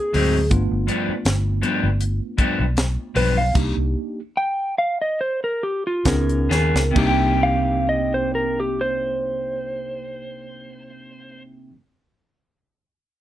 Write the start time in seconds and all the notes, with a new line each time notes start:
Already playing: A#3 C4 D#4 F4 G#4
0.13 D2 G#2 F#3 C4 D#4, open hi-hat
0.50 G1 A3 B3 D4 F4, kick, closed hi-hat
0.71 G1
0.87 G2 F3 B3 D4, closed hi-hat
1.09 muted fingered electric bass stroke
1.25 G1, snare, closed hi-hat
1.62 G2 F3 B3 D4, closed hi-hat
1.83 G1
2.01 closed hi-hat
2.38 G2 F3 B3 D4, kick, closed hi-hat
2.59 B1
2.77 snare, closed hi-hat
3.15 B1 G2 F3 B3 D4 B4, open hi-hat
3.37 F5
3.54 C2 A#3 D4 D#4 G4, kick, closed hi-hat, crash
3.77 C2
4.37 G5
4.78 F5
5.02 D#5
5.21 C5
5.44 A#4
5.63 G4
5.87 F4
6.05 C#2 B3 C#4 D#4 F4 G#4 A#4, kick, snare, closed hi-hat
6.29 closed hi-hat
6.49 D#2 C#3 B3 F4 G#4, snare
6.74 C#2, snare
6.91 C3 A#3 D4
6.96 C2 A#3 D#4 G4, kick, crash
7.06 G4
7.43 F5
7.89 D#5
8.14 C5
8.35 A#4
8.60 G4
8.81 C5